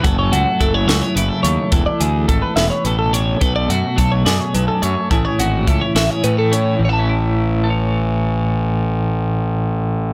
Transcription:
0.03 0.29 F#1 medium
0.03 1.72 F#2 medium
0.03 0.18 F#4 medium
0.03 0.18 A4 medium
0.03 kick medium
0.03 closed hi-hat medium
0.18 0.87 A4 soft
0.18 0.32 C#5 medium
0.32 0.45 C#2 medium
0.32 1.45 A3 medium
0.32 0.60 F#4 medium
0.32 closed hi-hat medium
0.60 0.85 F#1 medium
0.60 1.69 F#3 medium
0.60 1.16 E4 medium
0.60 0.74 A4 medium
0.60 kick medium
0.60 closed hi-hat medium
0.74 0.88 C#5 medium
0.87 1.00 C#2 medium
0.87 1.02 F#4 medium
0.87 1.01 E5 medium
0.87 snare medium
0.87 closed hi-hat medium
1.01 1.72 G#4 soft
1.01 1.15 C#5 medium
1.15 1.29 F#1 medium
1.15 1.69 C#3 medium
1.15 1.70 E4 soft
1.15 1.29 B4 medium
1.15 closed hi-hat medium
1.29 1.43 A4 medium
1.43 1.56 D#2 medium
1.43 2.28 A3 medium
1.43 1.72 C#5 medium
1.43 closed hi-hat medium
1.72 1.85 E1 medium
1.72 3.41 E3 medium
1.72 2.29 A4 medium
1.72 1.86 B4 medium
1.72 kick medium
1.72 closed hi-hat medium
1.86 2.00 D5 medium
2.00 2.26 D2 medium
2.00 3.13 D4 medium
2.00 2.28 G#4 medium
2.00 closed hi-hat medium
2.28 2.41 G#1 medium
2.28 3.69 A3 medium
2.28 2.43 A4 medium
2.28 2.57 A4 medium
2.28 kick medium
2.28 closed hi-hat medium
2.42 2.55 B4 medium
2.56 2.69 E1 medium
2.56 2.87 B4 medium
2.56 2.70 E5 medium
2.56 snare medium
2.56 closed hi-hat medium
2.70 2.84 C#5 medium
2.84 3.35 A1 medium
2.84 3.40 B2 soft
2.84 3.41 A4 medium
2.84 2.98 B4 medium
2.84 closed hi-hat medium
2.99 3.13 A4 medium
3.13 3.38 D4 medium
3.13 3.41 C#5 medium
3.13 closed hi-hat medium
3.41 3.67 B1 medium
3.41 4.54 B2 medium
3.41 4.25 A4 medium
3.41 3.55 B4 medium
3.41 kick medium
3.41 closed hi-hat medium
3.56 3.70 D5 medium
3.69 3.82 F#2 medium
3.69 4.83 A3 medium
3.69 3.98 F#4 medium
3.69 closed hi-hat medium
3.96 4.23 B1 medium
3.96 5.07 F#3 medium
3.96 4.54 D4 medium
3.96 4.12 A4 medium
3.96 kick medium
3.96 closed hi-hat medium
4.12 4.25 C#5 medium
4.25 4.38 F#2 medium
4.25 5.07 G#4 medium
4.25 4.40 D5 medium
4.25 snare medium
4.25 closed hi-hat medium
4.40 4.54 C#5 medium
4.54 4.67 B1 medium
4.54 5.10 F#2 medium
4.54 5.08 D4 medium
4.54 4.68 B4 medium
4.54 closed hi-hat medium
4.68 4.82 A4 medium
4.82 4.95 F#2 medium
4.82 5.11 A3 medium
4.82 5.11 C#5 medium
4.82 closed hi-hat medium
5.10 5.23 A1 medium
5.10 6.23 A2 medium
5.10 5.65 E3 medium
5.10 5.38 C#4 medium
5.10 5.66 E4 soft
5.10 5.95 G#4 medium
5.10 5.25 A4 medium
5.10 kick loud
5.10 closed hi-hat medium
5.25 5.39 C#5 medium
5.38 5.64 G#1 medium
5.38 6.22 C#4 medium
5.38 5.68 F#4 medium
5.38 closed hi-hat medium
5.66 5.80 C#2 medium
5.66 6.88 E3 medium
5.66 6.24 E4 medium
5.66 5.82 A4 medium
5.66 kick medium
5.66 closed hi-hat medium
5.81 5.95 C#5 medium
5.95 6.08 A1 medium
5.95 6.09 F#4 medium
5.95 6.10 E5 medium
5.95 snare medium
5.95 closed hi-hat medium
6.09 6.80 G#4 soft
6.09 6.24 C#5 medium
6.23 6.77 A2 medium
6.23 6.74 A2 medium
6.23 6.37 C#4 soft
6.23 6.38 B4 medium
6.23 closed hi-hat medium
6.37 6.80 E4 soft
6.37 6.52 A4 medium
6.52 6.77 C#4 soft
6.52 6.81 C#5 medium
6.52 closed hi-hat medium
6.79 10.13 A1 medium
6.79 10.13 A2 medium
6.85 6.89 C#5 medium
6.89 10.13 E3 medium
6.89 10.13 E5 medium
6.93 10.13 A5 medium
6.99 7.64 C#4 medium
7.09 7.70 E4 soft
7.64 10.13 A4 medium
7.70 10.13 C#5 medium

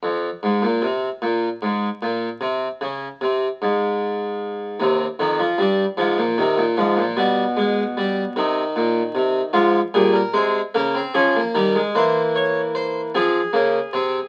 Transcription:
0.03 0.28 F2 medium
0.43 0.63 G#2 medium
0.62 0.82 A#2 medium
0.82 1.07 C3 medium
1.22 1.47 A#2 medium
1.62 1.87 G#2 medium
2.02 2.27 A#2 medium
2.41 2.66 C3 medium
2.81 3.06 C#3 medium
3.21 3.46 C3 medium
3.62 4.77 G#2 medium
4.80 5.04 D#2 medium
4.80 5.05 C3 medium
5.19 5.44 F2 medium
5.19 5.39 D#3 medium
5.39 5.59 F3 medium
5.58 5.83 G2 medium
5.58 5.83 G3 medium
5.97 6.18 G#2 medium
5.97 6.23 F3 medium
6.18 6.38 A#2 medium
6.38 6.58 C3 medium
6.38 6.63 D#3 medium
6.58 6.77 A#2 medium
6.77 6.97 G#2 medium
6.77 7.03 F3 medium
6.97 7.17 A#2 medium
7.17 8.33 B2 medium
7.17 7.42 G3 medium
7.57 7.82 G#3 medium
7.97 8.22 G3 medium
8.36 8.61 C3 medium
8.36 9.52 D#3 medium
8.76 9.01 A#2 medium
9.15 9.40 C3 medium
9.53 9.79 G#2 medium
9.53 9.79 F3 medium
9.53 9.79 F4 medium
9.94 10.19 A#2 medium
9.94 10.19 G3 medium
9.94 10.14 G#4 medium
10.13 10.34 A#4 medium
10.34 10.59 C3 medium
10.34 10.59 G#3 medium
10.34 10.59 C5 medium
10.74 11.00 C#3 medium
10.74 10.94 A#3 medium
10.74 10.99 A#4 medium
10.95 11.14 C4 medium
11.14 11.39 F3 medium
11.14 11.34 C#4 medium
11.14 11.39 G#4 medium
11.36 11.55 A#3 medium
11.55 11.79 D#3 medium
11.55 11.74 G3 medium
11.55 11.79 A#4 medium
11.75 11.94 G#3 medium
11.95 13.10 E3 medium
11.95 13.10 A#3 medium
11.95 12.20 C5 medium
12.36 12.60 C#5 medium
12.75 12.99 C5 medium
13.15 13.39 F3 medium
13.15 13.39 C4 medium
13.15 14.28 G#4 medium
13.53 13.78 C#3 medium
13.53 13.78 A#3 medium
13.93 14.18 C3 medium
13.93 14.18 C4 medium

